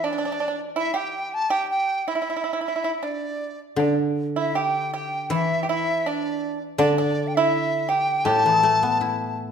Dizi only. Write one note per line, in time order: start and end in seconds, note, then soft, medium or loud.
0.04 0.60 D5 medium
0.78 0.99 E5 medium
0.97 1.35 G5 medium
1.34 1.52 A5 medium
1.50 1.70 G5 medium
1.71 2.09 G5 medium
2.08 2.64 E5 medium
2.64 3.05 E5 medium
3.03 3.60 D5 medium
3.79 3.97 D5 medium
4.37 4.58 E5 medium
4.57 4.94 G5 medium
4.95 5.30 G5 medium
5.33 5.67 E5 medium
5.69 6.09 E5 medium
6.08 6.62 D5 medium
6.79 6.96 D5 medium
6.98 7.29 D5 medium
7.27 7.37 G5 medium
7.35 7.91 E5 loud
7.90 8.26 G5 medium
8.25 9.39 A5 loud